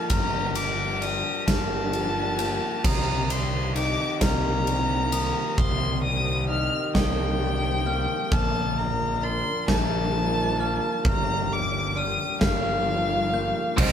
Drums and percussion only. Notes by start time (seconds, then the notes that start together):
0.10 kick, ride
0.55 ride
1.02 ride
1.48 kick, snare, ride
1.93 ride
2.39 ride
2.84 kick, crash
3.30 ride
3.76 ride
4.21 kick, snare, ride
4.67 ride
5.12 ride
5.58 kick
6.95 kick, snare
8.32 kick
9.68 kick, snare
11.05 kick
12.41 kick, snare
13.78 kick, crash